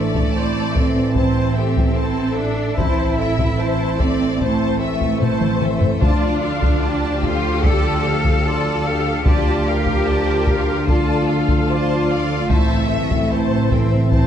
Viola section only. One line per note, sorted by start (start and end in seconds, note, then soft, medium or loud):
0.00 0.34 A4 soft
0.34 0.74 E4 soft
0.34 0.75 C5 soft
0.75 1.15 A4 soft
1.16 1.53 E4 soft
1.16 1.53 C5 soft
1.56 1.96 A4 soft
1.97 2.37 E4 soft
1.97 2.37 C5 soft
2.36 2.77 A4 soft
2.77 3.15 E4 medium
2.77 3.15 C5 soft
3.18 3.59 A4 soft
3.58 3.99 E4 soft
3.58 3.99 C5 soft
3.99 4.39 A4 soft
4.40 4.77 E4 soft
4.40 4.77 C5 soft
4.80 5.20 A4 soft
5.21 5.61 E4 medium
5.21 5.61 C5 soft
5.61 6.02 A4 soft
6.01 6.39 F4 medium
6.01 6.39 D5 medium
6.42 6.83 A4 soft
6.42 6.83 F5 soft
6.82 7.23 F4 soft
6.82 7.23 D5 soft
7.23 7.63 A4 soft
7.23 7.63 F5 soft
7.64 8.02 F4 soft
7.64 8.02 D5 medium
8.04 8.45 A4 soft
8.04 8.45 F5 soft
8.45 8.86 F4 medium
8.45 8.86 D5 medium
8.86 9.26 A4 medium
8.86 9.26 F5 soft
9.26 9.63 F4 medium
9.26 9.63 D5 medium
9.67 10.07 F4 soft
9.67 10.07 F5 soft
10.08 10.47 F4 medium
10.08 10.48 D5 soft
10.49 10.88 F4 soft
10.49 10.88 F5 soft
10.89 11.26 F4 medium
10.89 11.26 D5 soft
11.29 11.69 A4 soft
11.29 11.69 F5 soft
11.69 12.10 F4 soft
11.69 12.10 D5 soft
12.10 12.50 A4 soft
12.10 12.50 F5 soft
12.49 12.87 E4 soft
12.49 12.87 C5 medium
12.90 13.31 A4 soft
13.30 13.71 E4 soft
13.30 13.71 C5 soft
13.71 14.12 A4 soft
14.12 14.27 E4 soft
14.12 14.27 C5 soft